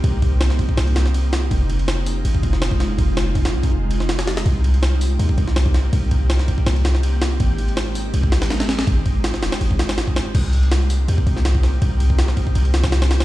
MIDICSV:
0, 0, Header, 1, 4, 480
1, 0, Start_track
1, 0, Key_signature, -3, "minor"
1, 0, Tempo, 368098
1, 51, Time_signature, 4, 2, 24, 8
1, 17275, End_track
2, 0, Start_track
2, 0, Title_t, "Ambient pad"
2, 0, Program_c, 0, 92
2, 0, Note_on_c, 0, 58, 86
2, 0, Note_on_c, 0, 60, 75
2, 0, Note_on_c, 0, 63, 79
2, 0, Note_on_c, 0, 67, 91
2, 1921, Note_off_c, 0, 67, 0
2, 1932, Note_off_c, 0, 58, 0
2, 1969, Note_on_c, 0, 56, 85
2, 1970, Note_on_c, 0, 65, 95
2, 5760, Note_off_c, 0, 60, 0
2, 5772, Note_off_c, 0, 56, 0
2, 5772, Note_off_c, 0, 65, 0
2, 5814, Note_on_c, 0, 60, 80
2, 5814, Note_on_c, 0, 67, 94
2, 5815, Note_on_c, 0, 58, 89
2, 9598, Note_off_c, 0, 63, 0
2, 9615, Note_off_c, 0, 58, 0
2, 9652, Note_on_c, 0, 56, 85
2, 9653, Note_on_c, 0, 63, 76
2, 13440, Note_off_c, 0, 67, 0
2, 13441, Note_off_c, 0, 60, 0
2, 13453, Note_off_c, 0, 56, 0
2, 13454, Note_off_c, 0, 63, 0
2, 13491, Note_on_c, 0, 58, 85
2, 13491, Note_on_c, 0, 67, 94
2, 13492, Note_on_c, 0, 63, 79
2, 13494, Note_on_c, 0, 60, 76
2, 17275, Note_off_c, 0, 58, 0
2, 17275, Note_off_c, 0, 60, 0
2, 17275, Note_off_c, 0, 63, 0
2, 17275, Note_off_c, 0, 67, 0
2, 17275, End_track
3, 0, Start_track
3, 0, Title_t, "808-style bass"
3, 0, Program_c, 1, 38
3, 51, Note_on_c, 1, 36, 106
3, 771, Note_on_c, 1, 31, 98
3, 790, Note_off_c, 1, 36, 0
3, 885, Note_off_c, 1, 31, 0
3, 1010, Note_on_c, 1, 36, 79
3, 1952, Note_off_c, 1, 36, 0
3, 1971, Note_on_c, 1, 29, 97
3, 2913, Note_off_c, 1, 29, 0
3, 2931, Note_on_c, 1, 32, 89
3, 3149, Note_off_c, 1, 32, 0
3, 3172, Note_on_c, 1, 29, 80
3, 3874, Note_off_c, 1, 29, 0
3, 3893, Note_on_c, 1, 29, 98
3, 4613, Note_on_c, 1, 36, 101
3, 4633, Note_off_c, 1, 29, 0
3, 4727, Note_off_c, 1, 36, 0
3, 4851, Note_on_c, 1, 29, 81
3, 5793, Note_off_c, 1, 29, 0
3, 5814, Note_on_c, 1, 36, 102
3, 6755, Note_off_c, 1, 36, 0
3, 6771, Note_on_c, 1, 39, 93
3, 6989, Note_off_c, 1, 39, 0
3, 7013, Note_on_c, 1, 36, 83
3, 7714, Note_off_c, 1, 36, 0
3, 7732, Note_on_c, 1, 36, 97
3, 8451, Note_on_c, 1, 31, 99
3, 8471, Note_off_c, 1, 36, 0
3, 8566, Note_off_c, 1, 31, 0
3, 8691, Note_on_c, 1, 36, 79
3, 9633, Note_off_c, 1, 36, 0
3, 9652, Note_on_c, 1, 32, 104
3, 10594, Note_off_c, 1, 32, 0
3, 10611, Note_on_c, 1, 36, 90
3, 10828, Note_off_c, 1, 36, 0
3, 10851, Note_on_c, 1, 32, 81
3, 11553, Note_off_c, 1, 32, 0
3, 11571, Note_on_c, 1, 32, 100
3, 12293, Note_on_c, 1, 27, 102
3, 12312, Note_off_c, 1, 32, 0
3, 12406, Note_off_c, 1, 27, 0
3, 12532, Note_on_c, 1, 32, 82
3, 13474, Note_off_c, 1, 32, 0
3, 13493, Note_on_c, 1, 36, 103
3, 14434, Note_off_c, 1, 36, 0
3, 14452, Note_on_c, 1, 39, 96
3, 14669, Note_off_c, 1, 39, 0
3, 14692, Note_on_c, 1, 36, 85
3, 15394, Note_off_c, 1, 36, 0
3, 15412, Note_on_c, 1, 36, 99
3, 16131, Note_on_c, 1, 31, 98
3, 16151, Note_off_c, 1, 36, 0
3, 16246, Note_off_c, 1, 31, 0
3, 16370, Note_on_c, 1, 36, 78
3, 16731, Note_off_c, 1, 36, 0
3, 16738, Note_on_c, 1, 36, 88
3, 17275, Note_off_c, 1, 36, 0
3, 17275, End_track
4, 0, Start_track
4, 0, Title_t, "Drums"
4, 51, Note_on_c, 9, 36, 117
4, 51, Note_on_c, 9, 51, 90
4, 181, Note_off_c, 9, 36, 0
4, 181, Note_off_c, 9, 51, 0
4, 290, Note_on_c, 9, 36, 98
4, 291, Note_on_c, 9, 51, 71
4, 421, Note_off_c, 9, 36, 0
4, 421, Note_off_c, 9, 51, 0
4, 530, Note_on_c, 9, 38, 120
4, 530, Note_on_c, 9, 51, 83
4, 656, Note_off_c, 9, 38, 0
4, 656, Note_on_c, 9, 38, 48
4, 660, Note_off_c, 9, 51, 0
4, 770, Note_on_c, 9, 36, 98
4, 770, Note_on_c, 9, 51, 68
4, 787, Note_off_c, 9, 38, 0
4, 897, Note_off_c, 9, 36, 0
4, 897, Note_on_c, 9, 36, 102
4, 900, Note_off_c, 9, 51, 0
4, 1010, Note_on_c, 9, 38, 111
4, 1010, Note_on_c, 9, 51, 88
4, 1027, Note_off_c, 9, 36, 0
4, 1138, Note_off_c, 9, 51, 0
4, 1138, Note_on_c, 9, 51, 48
4, 1141, Note_off_c, 9, 38, 0
4, 1251, Note_off_c, 9, 51, 0
4, 1251, Note_on_c, 9, 38, 105
4, 1251, Note_on_c, 9, 51, 79
4, 1378, Note_off_c, 9, 38, 0
4, 1378, Note_on_c, 9, 38, 46
4, 1381, Note_off_c, 9, 51, 0
4, 1492, Note_on_c, 9, 51, 88
4, 1509, Note_off_c, 9, 38, 0
4, 1622, Note_off_c, 9, 51, 0
4, 1732, Note_on_c, 9, 38, 126
4, 1732, Note_on_c, 9, 51, 69
4, 1862, Note_off_c, 9, 38, 0
4, 1862, Note_off_c, 9, 51, 0
4, 1971, Note_on_c, 9, 36, 109
4, 1971, Note_on_c, 9, 51, 86
4, 2101, Note_off_c, 9, 36, 0
4, 2102, Note_off_c, 9, 51, 0
4, 2211, Note_on_c, 9, 51, 71
4, 2339, Note_off_c, 9, 51, 0
4, 2339, Note_on_c, 9, 51, 44
4, 2451, Note_off_c, 9, 51, 0
4, 2451, Note_on_c, 9, 38, 119
4, 2451, Note_on_c, 9, 51, 86
4, 2582, Note_off_c, 9, 38, 0
4, 2582, Note_off_c, 9, 51, 0
4, 2692, Note_on_c, 9, 46, 82
4, 2822, Note_off_c, 9, 46, 0
4, 2933, Note_on_c, 9, 51, 96
4, 3058, Note_on_c, 9, 36, 93
4, 3063, Note_off_c, 9, 51, 0
4, 3172, Note_off_c, 9, 36, 0
4, 3172, Note_on_c, 9, 36, 99
4, 3172, Note_on_c, 9, 51, 70
4, 3301, Note_on_c, 9, 38, 43
4, 3302, Note_off_c, 9, 36, 0
4, 3303, Note_off_c, 9, 51, 0
4, 3413, Note_off_c, 9, 38, 0
4, 3413, Note_on_c, 9, 38, 120
4, 3413, Note_on_c, 9, 51, 85
4, 3539, Note_on_c, 9, 36, 101
4, 3543, Note_off_c, 9, 38, 0
4, 3543, Note_off_c, 9, 51, 0
4, 3654, Note_on_c, 9, 38, 53
4, 3654, Note_on_c, 9, 51, 72
4, 3669, Note_off_c, 9, 36, 0
4, 3785, Note_off_c, 9, 38, 0
4, 3785, Note_off_c, 9, 51, 0
4, 3892, Note_on_c, 9, 36, 112
4, 3894, Note_on_c, 9, 51, 87
4, 4023, Note_off_c, 9, 36, 0
4, 4024, Note_off_c, 9, 51, 0
4, 4134, Note_on_c, 9, 38, 111
4, 4134, Note_on_c, 9, 51, 63
4, 4264, Note_off_c, 9, 38, 0
4, 4264, Note_off_c, 9, 51, 0
4, 4372, Note_on_c, 9, 36, 102
4, 4373, Note_on_c, 9, 51, 77
4, 4501, Note_off_c, 9, 51, 0
4, 4501, Note_on_c, 9, 38, 113
4, 4501, Note_on_c, 9, 51, 65
4, 4502, Note_off_c, 9, 36, 0
4, 4631, Note_off_c, 9, 38, 0
4, 4631, Note_off_c, 9, 51, 0
4, 4739, Note_on_c, 9, 36, 99
4, 4739, Note_on_c, 9, 51, 83
4, 4869, Note_off_c, 9, 36, 0
4, 4869, Note_off_c, 9, 51, 0
4, 5094, Note_on_c, 9, 51, 74
4, 5220, Note_on_c, 9, 38, 44
4, 5224, Note_off_c, 9, 51, 0
4, 5333, Note_off_c, 9, 38, 0
4, 5333, Note_on_c, 9, 38, 101
4, 5333, Note_on_c, 9, 51, 78
4, 5460, Note_off_c, 9, 38, 0
4, 5460, Note_off_c, 9, 51, 0
4, 5460, Note_on_c, 9, 38, 105
4, 5460, Note_on_c, 9, 51, 80
4, 5574, Note_off_c, 9, 38, 0
4, 5574, Note_off_c, 9, 51, 0
4, 5574, Note_on_c, 9, 38, 114
4, 5574, Note_on_c, 9, 51, 83
4, 5700, Note_off_c, 9, 38, 0
4, 5700, Note_off_c, 9, 51, 0
4, 5700, Note_on_c, 9, 38, 108
4, 5700, Note_on_c, 9, 51, 83
4, 5813, Note_off_c, 9, 51, 0
4, 5813, Note_on_c, 9, 36, 116
4, 5813, Note_on_c, 9, 51, 88
4, 5831, Note_off_c, 9, 38, 0
4, 5943, Note_off_c, 9, 36, 0
4, 5944, Note_off_c, 9, 51, 0
4, 6054, Note_on_c, 9, 51, 72
4, 6181, Note_off_c, 9, 51, 0
4, 6181, Note_on_c, 9, 51, 42
4, 6294, Note_off_c, 9, 51, 0
4, 6294, Note_on_c, 9, 38, 113
4, 6294, Note_on_c, 9, 51, 84
4, 6424, Note_off_c, 9, 38, 0
4, 6424, Note_off_c, 9, 51, 0
4, 6535, Note_on_c, 9, 46, 80
4, 6665, Note_off_c, 9, 46, 0
4, 6774, Note_on_c, 9, 51, 91
4, 6900, Note_on_c, 9, 36, 99
4, 6904, Note_off_c, 9, 51, 0
4, 7013, Note_off_c, 9, 36, 0
4, 7013, Note_on_c, 9, 36, 100
4, 7013, Note_on_c, 9, 51, 69
4, 7140, Note_on_c, 9, 38, 43
4, 7143, Note_off_c, 9, 36, 0
4, 7143, Note_off_c, 9, 51, 0
4, 7253, Note_off_c, 9, 38, 0
4, 7253, Note_on_c, 9, 38, 116
4, 7253, Note_on_c, 9, 51, 88
4, 7379, Note_on_c, 9, 36, 101
4, 7383, Note_off_c, 9, 38, 0
4, 7383, Note_off_c, 9, 51, 0
4, 7490, Note_on_c, 9, 38, 55
4, 7490, Note_on_c, 9, 51, 69
4, 7509, Note_off_c, 9, 36, 0
4, 7621, Note_off_c, 9, 38, 0
4, 7621, Note_off_c, 9, 51, 0
4, 7731, Note_on_c, 9, 51, 95
4, 7732, Note_on_c, 9, 36, 112
4, 7862, Note_off_c, 9, 36, 0
4, 7862, Note_off_c, 9, 51, 0
4, 7971, Note_on_c, 9, 51, 72
4, 7972, Note_on_c, 9, 36, 101
4, 8101, Note_off_c, 9, 51, 0
4, 8102, Note_off_c, 9, 36, 0
4, 8212, Note_on_c, 9, 38, 114
4, 8212, Note_on_c, 9, 51, 91
4, 8338, Note_off_c, 9, 38, 0
4, 8338, Note_on_c, 9, 38, 49
4, 8342, Note_off_c, 9, 51, 0
4, 8451, Note_on_c, 9, 51, 69
4, 8452, Note_on_c, 9, 36, 98
4, 8468, Note_off_c, 9, 38, 0
4, 8579, Note_off_c, 9, 36, 0
4, 8579, Note_on_c, 9, 36, 102
4, 8581, Note_off_c, 9, 51, 0
4, 8691, Note_on_c, 9, 38, 112
4, 8691, Note_on_c, 9, 51, 84
4, 8709, Note_off_c, 9, 36, 0
4, 8819, Note_off_c, 9, 51, 0
4, 8819, Note_on_c, 9, 51, 47
4, 8821, Note_off_c, 9, 38, 0
4, 8931, Note_off_c, 9, 51, 0
4, 8931, Note_on_c, 9, 38, 106
4, 8931, Note_on_c, 9, 51, 78
4, 9059, Note_off_c, 9, 38, 0
4, 9059, Note_on_c, 9, 38, 45
4, 9061, Note_off_c, 9, 51, 0
4, 9171, Note_on_c, 9, 51, 86
4, 9190, Note_off_c, 9, 38, 0
4, 9302, Note_off_c, 9, 51, 0
4, 9409, Note_on_c, 9, 38, 127
4, 9409, Note_on_c, 9, 51, 70
4, 9540, Note_off_c, 9, 38, 0
4, 9540, Note_off_c, 9, 51, 0
4, 9649, Note_on_c, 9, 51, 87
4, 9651, Note_on_c, 9, 36, 109
4, 9780, Note_off_c, 9, 51, 0
4, 9781, Note_off_c, 9, 36, 0
4, 9890, Note_on_c, 9, 51, 69
4, 10019, Note_off_c, 9, 51, 0
4, 10019, Note_on_c, 9, 51, 44
4, 10131, Note_off_c, 9, 51, 0
4, 10131, Note_on_c, 9, 38, 114
4, 10131, Note_on_c, 9, 51, 82
4, 10261, Note_off_c, 9, 38, 0
4, 10261, Note_off_c, 9, 51, 0
4, 10371, Note_on_c, 9, 46, 81
4, 10501, Note_off_c, 9, 46, 0
4, 10611, Note_on_c, 9, 51, 91
4, 10738, Note_on_c, 9, 36, 94
4, 10741, Note_off_c, 9, 51, 0
4, 10850, Note_on_c, 9, 38, 104
4, 10850, Note_on_c, 9, 51, 83
4, 10869, Note_off_c, 9, 36, 0
4, 10976, Note_off_c, 9, 38, 0
4, 10976, Note_off_c, 9, 51, 0
4, 10976, Note_on_c, 9, 38, 107
4, 10976, Note_on_c, 9, 51, 81
4, 11089, Note_off_c, 9, 38, 0
4, 11089, Note_off_c, 9, 51, 0
4, 11089, Note_on_c, 9, 38, 109
4, 11089, Note_on_c, 9, 51, 79
4, 11216, Note_off_c, 9, 38, 0
4, 11216, Note_off_c, 9, 51, 0
4, 11216, Note_on_c, 9, 38, 107
4, 11216, Note_on_c, 9, 51, 84
4, 11330, Note_off_c, 9, 38, 0
4, 11330, Note_off_c, 9, 51, 0
4, 11330, Note_on_c, 9, 38, 109
4, 11330, Note_on_c, 9, 51, 86
4, 11457, Note_off_c, 9, 38, 0
4, 11457, Note_off_c, 9, 51, 0
4, 11457, Note_on_c, 9, 38, 109
4, 11457, Note_on_c, 9, 51, 83
4, 11570, Note_off_c, 9, 51, 0
4, 11570, Note_on_c, 9, 51, 90
4, 11571, Note_on_c, 9, 36, 118
4, 11587, Note_off_c, 9, 38, 0
4, 11700, Note_off_c, 9, 51, 0
4, 11701, Note_off_c, 9, 36, 0
4, 11810, Note_on_c, 9, 51, 70
4, 11811, Note_on_c, 9, 36, 99
4, 11940, Note_off_c, 9, 51, 0
4, 11941, Note_off_c, 9, 36, 0
4, 12050, Note_on_c, 9, 38, 114
4, 12050, Note_on_c, 9, 51, 85
4, 12178, Note_off_c, 9, 38, 0
4, 12178, Note_on_c, 9, 38, 52
4, 12181, Note_off_c, 9, 51, 0
4, 12291, Note_off_c, 9, 38, 0
4, 12291, Note_on_c, 9, 38, 108
4, 12291, Note_on_c, 9, 51, 78
4, 12418, Note_off_c, 9, 38, 0
4, 12418, Note_off_c, 9, 51, 0
4, 12418, Note_on_c, 9, 38, 109
4, 12418, Note_on_c, 9, 51, 80
4, 12531, Note_off_c, 9, 51, 0
4, 12531, Note_on_c, 9, 51, 85
4, 12549, Note_off_c, 9, 38, 0
4, 12658, Note_on_c, 9, 36, 87
4, 12662, Note_off_c, 9, 51, 0
4, 12771, Note_on_c, 9, 38, 108
4, 12771, Note_on_c, 9, 51, 86
4, 12789, Note_off_c, 9, 36, 0
4, 12898, Note_off_c, 9, 38, 0
4, 12898, Note_off_c, 9, 51, 0
4, 12898, Note_on_c, 9, 38, 109
4, 12898, Note_on_c, 9, 51, 80
4, 13011, Note_off_c, 9, 38, 0
4, 13011, Note_off_c, 9, 51, 0
4, 13011, Note_on_c, 9, 38, 102
4, 13011, Note_on_c, 9, 51, 77
4, 13138, Note_on_c, 9, 36, 87
4, 13141, Note_off_c, 9, 38, 0
4, 13141, Note_off_c, 9, 51, 0
4, 13253, Note_on_c, 9, 38, 115
4, 13253, Note_on_c, 9, 51, 82
4, 13269, Note_off_c, 9, 36, 0
4, 13383, Note_off_c, 9, 38, 0
4, 13383, Note_off_c, 9, 51, 0
4, 13492, Note_on_c, 9, 36, 113
4, 13493, Note_on_c, 9, 49, 97
4, 13493, Note_on_c, 9, 51, 95
4, 13622, Note_off_c, 9, 36, 0
4, 13624, Note_off_c, 9, 49, 0
4, 13624, Note_off_c, 9, 51, 0
4, 13732, Note_on_c, 9, 51, 69
4, 13860, Note_off_c, 9, 51, 0
4, 13860, Note_on_c, 9, 51, 44
4, 13973, Note_off_c, 9, 51, 0
4, 13973, Note_on_c, 9, 38, 116
4, 13973, Note_on_c, 9, 51, 88
4, 14103, Note_off_c, 9, 38, 0
4, 14103, Note_off_c, 9, 51, 0
4, 14213, Note_on_c, 9, 46, 82
4, 14343, Note_off_c, 9, 46, 0
4, 14453, Note_on_c, 9, 51, 92
4, 14579, Note_on_c, 9, 36, 98
4, 14584, Note_off_c, 9, 51, 0
4, 14692, Note_off_c, 9, 36, 0
4, 14692, Note_on_c, 9, 36, 96
4, 14693, Note_on_c, 9, 51, 69
4, 14820, Note_on_c, 9, 38, 41
4, 14822, Note_off_c, 9, 36, 0
4, 14823, Note_off_c, 9, 51, 0
4, 14932, Note_off_c, 9, 38, 0
4, 14932, Note_on_c, 9, 38, 121
4, 14932, Note_on_c, 9, 51, 90
4, 15059, Note_on_c, 9, 36, 95
4, 15063, Note_off_c, 9, 38, 0
4, 15063, Note_off_c, 9, 51, 0
4, 15171, Note_on_c, 9, 38, 55
4, 15171, Note_on_c, 9, 51, 73
4, 15189, Note_off_c, 9, 36, 0
4, 15302, Note_off_c, 9, 38, 0
4, 15302, Note_off_c, 9, 51, 0
4, 15411, Note_on_c, 9, 36, 113
4, 15411, Note_on_c, 9, 51, 88
4, 15541, Note_off_c, 9, 51, 0
4, 15542, Note_off_c, 9, 36, 0
4, 15651, Note_on_c, 9, 51, 83
4, 15778, Note_on_c, 9, 36, 88
4, 15781, Note_off_c, 9, 51, 0
4, 15890, Note_on_c, 9, 38, 108
4, 15890, Note_on_c, 9, 51, 85
4, 15908, Note_off_c, 9, 36, 0
4, 16017, Note_off_c, 9, 38, 0
4, 16017, Note_on_c, 9, 38, 49
4, 16021, Note_off_c, 9, 51, 0
4, 16129, Note_on_c, 9, 51, 69
4, 16130, Note_on_c, 9, 36, 99
4, 16147, Note_off_c, 9, 38, 0
4, 16258, Note_off_c, 9, 36, 0
4, 16258, Note_on_c, 9, 36, 97
4, 16260, Note_off_c, 9, 51, 0
4, 16370, Note_on_c, 9, 51, 94
4, 16388, Note_off_c, 9, 36, 0
4, 16497, Note_off_c, 9, 51, 0
4, 16497, Note_on_c, 9, 51, 45
4, 16611, Note_off_c, 9, 51, 0
4, 16611, Note_on_c, 9, 38, 111
4, 16611, Note_on_c, 9, 51, 82
4, 16737, Note_off_c, 9, 38, 0
4, 16737, Note_off_c, 9, 51, 0
4, 16737, Note_on_c, 9, 38, 110
4, 16737, Note_on_c, 9, 51, 76
4, 16851, Note_off_c, 9, 38, 0
4, 16851, Note_off_c, 9, 51, 0
4, 16851, Note_on_c, 9, 38, 108
4, 16851, Note_on_c, 9, 51, 79
4, 16978, Note_off_c, 9, 38, 0
4, 16978, Note_off_c, 9, 51, 0
4, 16978, Note_on_c, 9, 38, 112
4, 16978, Note_on_c, 9, 51, 80
4, 17092, Note_off_c, 9, 38, 0
4, 17092, Note_off_c, 9, 51, 0
4, 17092, Note_on_c, 9, 38, 110
4, 17092, Note_on_c, 9, 51, 84
4, 17218, Note_off_c, 9, 38, 0
4, 17218, Note_off_c, 9, 51, 0
4, 17218, Note_on_c, 9, 38, 105
4, 17218, Note_on_c, 9, 51, 80
4, 17275, Note_off_c, 9, 38, 0
4, 17275, Note_off_c, 9, 51, 0
4, 17275, End_track
0, 0, End_of_file